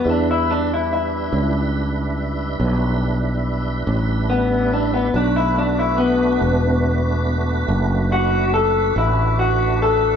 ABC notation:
X:1
M:12/8
L:1/16
Q:3/8=47
K:Bm
V:1 name="Clean electric guitar"
D E D E E8 z8 B,2 D B, | D E D E B,8 z2 F2 A2 E2 F2 A2 |]
V:2 name="Tonewheel organ"
[G,DEB]24 | [A,DFB]24 |]
V:3 name="Fretless electric bass" clef=bass
E,,6 C,,6 B,,,6 A,,,6 | B,,,6 E,,,6 F,,,6 A,,,6 |]